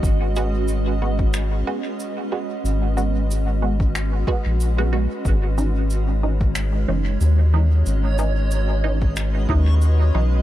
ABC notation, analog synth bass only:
X:1
M:4/4
L:1/16
Q:"Swing 16ths" 1/4=92
K:G#m
V:1 name="Analog synth bass" clef=bass
G,,,8- G,,,2 z6 | G,,,8- G,,,2 z A,,,4 z | G,,,8- G,,,2 F,,,2 D,,4 | G,,,8- G,,,2 D,,4 B,,,2 |]